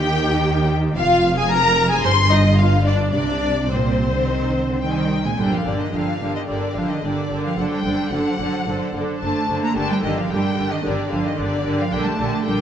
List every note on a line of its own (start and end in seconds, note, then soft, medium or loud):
0.00 0.98 D#2 medium
0.00 0.98 D#3 medium
0.00 0.70 G4 medium
0.00 0.69 G5 medium
0.00 0.70 G5 medium
0.97 2.00 F1 medium
0.97 2.01 F2 medium
0.97 1.35 F4 medium
0.97 1.35 F5 medium
0.97 1.35 F5 loud
1.38 1.51 G#4 medium
1.38 1.51 G#5 loud
1.38 1.44 G#5 medium
1.50 1.90 A#4 medium
1.50 1.90 A#5 medium
1.50 1.91 A#5 loud
1.90 2.04 G#4 medium
1.90 2.04 G#5 medium
2.04 3.14 G1 medium
2.04 3.14 G2 medium
2.04 2.12 C5 medium
2.04 2.31 C6 medium
2.04 2.31 C6 loud
2.31 2.39 D#4 medium
2.31 2.58 D#5 medium
2.31 2.59 D#5 medium
2.58 2.85 F4 medium
2.58 2.86 F5 medium
2.85 3.13 D4 medium
2.85 3.12 D5 medium
2.85 2.95 D5 medium
3.13 5.18 C2 medium
3.13 3.65 C3 medium
3.13 3.69 D4 medium
3.13 3.69 D5 medium
3.70 4.10 A#2 medium
3.70 5.08 C4 medium
3.70 5.08 C5 medium
3.70 4.83 C5 medium
4.13 4.26 D3 medium
4.26 4.68 D#3 medium
4.68 4.82 D3 medium
4.82 5.24 D#3 medium
4.82 5.22 G3 medium
4.82 4.89 G5 medium
4.91 4.97 G#5 medium
4.97 5.25 G5 medium
5.25 5.39 A#2 medium
5.25 5.31 G#3 medium
5.25 5.39 G#5 medium
5.38 5.47 G1 soft
5.38 5.65 D3 soft
5.38 5.52 G3 medium
5.38 5.65 D4 soft
5.38 5.65 G4 soft
5.38 5.65 A#4 soft
5.38 5.52 G5 medium
5.53 5.67 F3 soft
5.53 5.67 F5 medium
5.66 5.74 G1 soft
5.66 5.92 D3 soft
5.66 5.80 D3 soft
5.66 5.92 D4 soft
5.66 5.93 G4 soft
5.66 5.92 A#4 soft
5.66 5.80 D5 medium
5.80 5.94 D#3 soft
5.80 5.94 D#5 medium
5.93 6.01 G1 medium
5.93 6.20 D3 soft
5.93 6.34 F3 medium
5.93 6.20 D4 soft
5.93 6.20 G4 soft
5.93 6.20 A#4 soft
5.93 6.35 F5 medium
6.21 6.29 G1 soft
6.21 6.47 D3 soft
6.21 6.47 D4 soft
6.21 6.47 G4 soft
6.21 6.48 A#4 soft
6.35 6.49 D#3 soft
6.35 6.41 D#5 medium
6.48 6.57 G1 soft
6.48 6.75 D3 soft
6.48 6.76 D3 soft
6.48 6.76 D4 soft
6.48 6.76 G4 soft
6.48 6.76 A#4 soft
6.48 6.76 D5 medium
6.76 6.84 G1 soft
6.76 7.03 D3 soft
6.76 6.90 F3 medium
6.76 7.03 D4 soft
6.76 7.03 G4 soft
6.76 7.03 A#4 soft
6.76 6.90 F5 medium
6.90 6.95 D#3 soft
6.90 7.04 D#5 soft
7.03 7.12 G1 soft
7.03 7.43 D3 medium
7.03 7.30 D3 soft
7.03 7.30 D4 soft
7.03 7.29 G4 soft
7.03 7.29 A#4 soft
7.03 7.45 D5 medium
7.30 7.39 G1 soft
7.30 7.58 D3 soft
7.30 7.58 D4 soft
7.30 7.57 G4 soft
7.30 7.57 A#4 soft
7.44 7.58 F3 soft
7.44 7.58 F5 medium
7.58 7.66 F#1 soft
7.58 7.85 D3 soft
7.58 7.72 F#3 medium
7.58 7.84 D4 soft
7.58 7.85 A4 soft
7.58 7.84 C5 soft
7.58 7.72 F#5 medium
7.72 8.13 G3 soft
7.72 8.12 G5 medium
7.85 7.93 F#1 soft
7.85 8.12 D3 soft
7.85 8.12 D4 soft
7.85 8.12 A4 soft
7.85 8.12 C5 soft
8.11 8.19 F#1 medium
8.11 8.40 D3 soft
8.11 8.95 F#3 medium
8.11 8.40 D4 soft
8.11 8.38 A4 soft
8.11 8.39 C5 soft
8.11 8.94 F#5 medium
8.40 8.48 F#1 soft
8.40 8.67 D3 soft
8.40 8.67 D4 soft
8.40 8.66 A4 soft
8.40 8.66 C5 soft
8.67 8.75 F#1 medium
8.67 8.94 D3 soft
8.67 8.95 D4 soft
8.67 8.94 A4 medium
8.67 8.94 C5 soft
8.94 9.02 F#1 soft
8.94 9.22 D3 soft
8.94 9.21 D4 soft
8.94 9.20 A4 soft
8.94 9.20 C5 soft
9.20 9.30 F#1 soft
9.20 9.49 D3 soft
9.20 9.60 A3 medium
9.20 9.49 D4 soft
9.20 9.47 A4 soft
9.20 9.47 C5 soft
9.20 9.59 A5 medium
9.48 9.57 F#1 soft
9.48 9.75 D3 soft
9.48 9.74 D4 soft
9.48 9.75 A4 soft
9.48 9.75 C5 soft
9.62 9.76 A#3 medium
9.62 9.77 A#5 medium
9.75 9.84 G1 soft
9.75 10.02 D3 medium
9.75 9.90 A3 medium
9.75 10.03 D4 medium
9.75 10.01 G4 soft
9.75 10.00 A#4 soft
9.75 9.90 A5 medium
9.90 10.04 G3 medium
9.90 10.04 G5 medium
10.02 10.12 G1 soft
10.02 10.30 D3 soft
10.02 10.17 D#3 soft
10.02 10.30 D4 soft
10.02 10.27 G4 soft
10.02 10.28 A#4 soft
10.02 10.17 D#5 medium
10.16 10.22 F3 soft
10.16 10.31 F5 medium
10.29 10.39 G1 medium
10.29 10.56 D3 soft
10.29 10.70 G3 medium
10.29 10.56 D4 soft
10.29 10.55 G4 soft
10.29 10.55 A#4 soft
10.29 10.72 G5 medium
10.56 10.66 G1 soft
10.56 10.83 D3 soft
10.56 10.83 D4 soft
10.56 10.82 G4 soft
10.56 10.82 A#4 soft
10.71 10.76 D#3 medium
10.71 10.85 D#5 medium
10.84 10.93 G1 medium
10.84 10.92 D3 soft
10.84 11.09 D3 soft
10.84 11.10 D4 soft
10.84 11.08 G4 medium
10.84 11.09 A#4 medium
10.84 11.12 D5 medium
11.10 11.20 G1 soft
11.10 11.36 D3 soft
11.10 11.24 F3 medium
11.10 11.36 D4 soft
11.10 11.36 G4 soft
11.10 11.36 A#4 soft
11.10 11.25 F5 medium
11.24 11.38 D#3 medium
11.24 11.39 D#5 medium
11.37 11.47 G1 medium
11.37 11.78 D3 medium
11.37 11.63 D3 soft
11.37 11.64 D4 soft
11.37 11.63 G4 soft
11.37 11.62 A#4 soft
11.37 11.79 D5 medium
11.64 11.73 G1 soft
11.64 11.90 D3 soft
11.64 11.90 D4 soft
11.64 11.91 G4 medium
11.64 11.90 A#4 soft
11.79 11.84 F3 medium
11.79 11.93 F5 medium
11.91 12.00 A#1 medium
11.91 12.17 D3 medium
11.91 12.05 G3 medium
11.91 12.17 D4 medium
11.91 12.17 G4 medium
11.91 12.17 A#4 medium
11.91 12.05 G5 medium
12.05 12.46 A3 medium
12.05 12.46 A5 medium
12.18 12.27 A#1 medium
12.18 12.44 D3 medium
12.18 12.44 D4 soft
12.18 12.43 G4 soft
12.18 12.44 A#4 soft
12.45 12.54 A#1 medium
12.45 12.61 D3 soft
12.45 12.61 G3 medium
12.45 12.61 D4 soft
12.45 12.61 G4 soft
12.45 12.61 A#4 soft
12.45 12.61 G5 medium